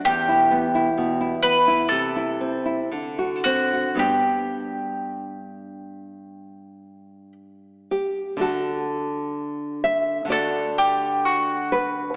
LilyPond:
<<
  \new Staff \with { instrumentName = "Mandolin" } { \time 4/4 \key g \major \tempo 4 = 63 g'4. b'8 a'4. fis'8 | g'2. r4 | \key d \major r2 a'8 g'8 fis'4 | }
  \new Staff \with { instrumentName = "Nylon-string guitar" } { \time 4/4 \key g \major << { r1 | r2. r8 g'8 | \key d \major a'4. e''8 d''4. b'8 | } \\ { e,16 e'16 b16 e'16 b,16 e'16 b16 e'16 c16 e'16 c'16 e'16 d16 fis'16 c'16 fis'16 | <g, b d'>1 | <d a fis'>2 <d a fis'>2 | } >> }
>>